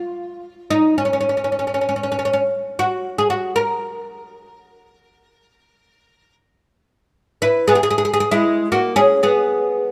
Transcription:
0.00 0.70 F4 medium
0.70 0.95 D#4 medium
0.98 1.04 C#4 medium
1.05 1.12 C#4 soft
1.13 1.19 C#4 medium
1.21 1.28 C#4 soft
1.29 1.36 C#4 soft
1.37 1.43 C#4 soft
1.44 1.51 C#4 soft
1.52 1.58 C#4 soft
1.59 1.66 C#4 soft
1.67 1.73 C#4 soft
1.74 1.80 C#4 medium
1.81 1.87 C#4 soft
1.89 1.95 C#4 medium
1.96 2.02 C#4 soft
2.03 2.10 C#4 medium
2.12 2.18 C#4 medium
2.19 2.24 C#4 medium
2.25 2.32 C#4 medium
2.33 2.41 C#4 medium
2.79 3.18 F#4 medium
3.18 3.30 G#4 medium
3.30 3.55 F#4 medium
3.56 6.35 A#4 medium
7.42 7.66 E4 medium
7.42 7.66 B4 medium
7.68 7.75 B3 medium
7.68 7.74 G#4 medium
7.75 7.82 G#4 medium
7.83 7.89 G#4 medium
7.91 7.97 G#4 medium
7.98 8.04 G#4 medium
8.05 8.12 G#4 medium
8.13 8.19 G#4 medium
8.20 8.28 G#4 medium
8.31 8.68 G#3 medium
8.31 8.67 E4 loud
8.72 8.95 A#3 medium
8.72 8.95 F#4 medium
8.96 9.20 C#4 medium
8.96 9.22 G#4 medium
9.23 9.91 B3 medium
9.23 9.91 G#4 medium

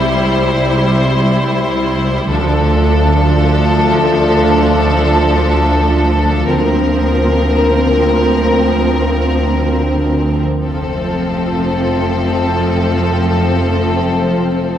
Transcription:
0.00 2.26 C2 soft
0.00 2.15 G3 soft
0.00 2.26 G3 medium
0.00 2.15 E4 soft
0.00 2.26 E4 soft
0.00 2.26 C5 medium
2.30 6.43 D2 medium
2.30 6.43 F3 medium
2.30 6.44 A3 medium
2.30 6.44 D4 medium
2.30 6.44 F4 medium
2.30 6.43 A4 medium
6.47 10.40 D2 soft
6.47 10.41 D2 soft
6.47 10.41 F3 soft
6.47 10.39 A#3 soft
6.47 10.41 C4 soft
6.47 10.39 C4 soft
6.47 10.41 A#4 medium
10.64 14.78 F1 soft
10.64 14.78 F2 soft
10.64 14.78 F3 soft
10.64 14.78 A3 soft
10.64 14.78 C4 soft
10.64 14.78 F4 soft
10.64 14.78 A4 soft
10.64 14.78 C5 soft

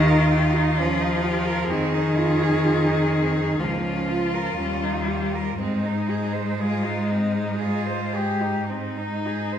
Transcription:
0.00 1.70 D#2 medium
0.00 0.78 D#3 loud
0.00 1.66 F4 medium
0.08 0.33 A#4 medium
0.31 0.57 G4 medium
0.56 0.80 D#4 medium
0.78 1.72 F3 medium
0.78 1.02 C#4 medium
1.00 1.25 D#4 medium
1.24 1.48 G4 medium
1.46 1.69 A#4 medium
1.69 3.55 F2 medium
1.69 3.61 D#3 medium
1.69 1.96 C4 medium
1.69 3.61 G#4 medium
1.94 2.19 D#4 medium
2.17 2.43 F4 medium
2.42 2.66 G#4 medium
2.64 2.88 F4 medium
2.87 3.12 D#4 soft
3.11 3.37 C4 medium
3.36 3.59 D#4 soft
3.59 4.55 C#2 medium
3.59 4.57 F3 medium
3.59 3.85 A#3 soft
3.59 5.61 F4 medium
3.84 4.11 C#4 soft
4.09 4.36 F4 medium
4.34 4.58 A#4 soft
4.57 5.56 D#2 medium
4.57 5.60 G3 medium
4.57 4.85 C#4 soft
4.83 5.10 D#4 soft
5.08 5.36 G4 soft
5.35 5.58 A#4 soft
5.58 9.54 G#2 medium
5.58 9.27 G#3 medium
5.58 5.86 C4 soft
5.58 6.50 D#4 soft
5.84 6.11 D#4 soft
6.10 6.35 G#4 soft
6.33 6.61 C5 soft
6.59 7.11 F4 medium
6.59 6.86 G#4 soft
6.85 7.13 D#4 soft
7.09 7.35 C4 soft
7.09 7.62 D#4 soft
7.34 7.59 D#4 soft
7.59 8.17 F4 medium
7.59 7.88 G#4 soft
7.86 8.15 C5 soft
8.14 8.69 G4 medium
8.14 8.43 G#4 soft
8.42 8.71 D#4 soft
8.69 8.99 C4 soft
8.69 9.59 D#4 medium
8.97 9.28 D#4 soft
9.26 9.54 G#4 soft
9.52 9.59 C5 soft

